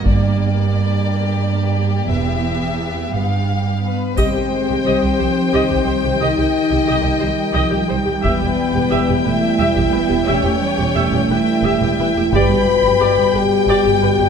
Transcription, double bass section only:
0.06 G1
2.10 E1
3.13 G1
4.17 C2
4.35 C2
4.69 C2
4.85 C2
5.03 C2
5.20 C2
5.54 C2
5.71 C2
5.87 C2
6.04 C2
6.21 C2
6.37 C2
6.72 C2
6.89 C2
7.05 C2
7.22 C2
7.55 C2
7.72 C2
7.91 C2
8.08 C2
8.25 E1
8.42 E1
8.75 E1
8.92 E1
9.10 E1
9.26 E1
9.60 E1
9.77 E1
9.94 E1
10.11 E1
10.29 E1
10.44 E1
10.79 E1
10.95 E1
11.12 E1
11.28 E1
11.63 E1
11.80 E1
11.98 E1
12.16 E1
12.33 G1
12.50 G1
12.84 G1
13.01 G1
13.18 G1
13.35 G1
13.68 G1
13.85 G1
14.02 G1
14.19 G1

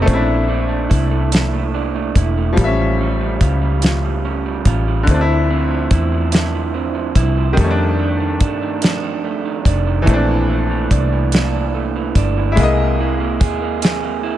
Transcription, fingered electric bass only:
0.09 A#1
0.92 C2
2.16 E1
2.59 A1
3.42 C#2
4.66 A1
5.08 D2
5.92 E2
7.17 C2
7.58 F2
8.42 G2
9.66 F1
10.08 A#1
10.92 C2
12.17 G1
12.58 C2
13.42 D#2

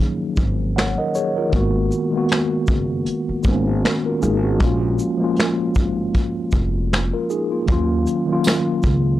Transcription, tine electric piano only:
Already playing: D#3 F3 F#3 A#3 C#4 D#4 G#4
0.76 C#5 F#5
0.98 A#4 D#5
1.15 G#4 C#5
1.37 F4 A#4
1.49 D#3 G#3 A#3
1.54 B3 F#4
2.11 D#3 G#3 A#3
2.16 B3 F#4
3.43 D#3 G#3 A#3
3.47 B3 C#4
3.84 C#4 F#4
4.06 F4 A#4
4.22 D#4 G#4
4.44 C#4 F#4
4.57 F3 G#3 A#3
4.62 C#4 F4
5.18 F3 G#3 A#3
5.23 C#4 F4
7.13 F4 A#4
7.30 D#4 G#4
7.52 A#3 F4
7.66 D#3 F#3 A#3
7.70 C#4 F4
8.26 D#3 F#3 A#3
8.31 C#4 F4

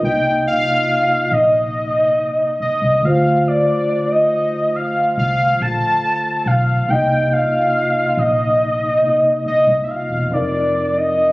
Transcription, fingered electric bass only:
0.03 C2
1.31 A#1
2.60 muted fingered electric bass stroke
2.82 C2
3.03 D2
5.17 C2
5.60 A#1
6.46 B1
6.89 C2
8.17 A#1
9.46 muted fingered electric bass stroke
9.67 C2
10.10 E1
10.31 F1

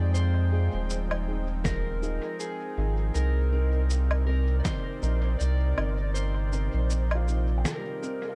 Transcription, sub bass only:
Already playing: F2
0.74 D#1
2.77 G#1
3.15 C2
5.02 A#1
5.40 C2
5.78 G1
6.74 A#1

